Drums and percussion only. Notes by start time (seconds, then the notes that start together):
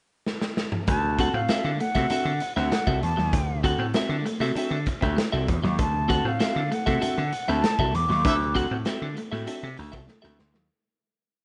0.26 snare
0.41 snare
0.57 snare
0.72 mid tom
0.87 kick, closed hi-hat
1.18 kick, closed hi-hat
1.48 snare, closed hi-hat
1.80 closed hi-hat
1.94 kick, snare, closed hi-hat
2.10 closed hi-hat
2.40 closed hi-hat
2.56 snare
2.72 snare, closed hi-hat
2.87 kick
3.03 closed hi-hat
3.18 snare
3.33 kick, closed hi-hat
3.64 kick, closed hi-hat
3.94 snare, closed hi-hat
4.26 closed hi-hat
4.41 snare, closed hi-hat
4.56 closed hi-hat
4.86 kick, closed hi-hat
5.02 kick, snare
5.18 snare, closed hi-hat
5.48 kick, closed hi-hat
5.64 snare
5.79 kick, closed hi-hat
6.10 kick, closed hi-hat
6.40 snare, closed hi-hat
6.72 closed hi-hat
6.87 kick, snare, closed hi-hat
7.02 closed hi-hat
7.32 closed hi-hat
7.48 snare
7.64 snare, closed hi-hat
7.79 kick
7.95 closed hi-hat
8.10 snare
8.25 kick, closed hi-hat
8.56 kick, closed hi-hat
8.85 snare, closed hi-hat
9.17 closed hi-hat
9.32 snare
9.47 closed hi-hat
9.77 open hi-hat
9.93 kick, snare
10.08 snare
10.23 snare
10.39 snare
10.54 snare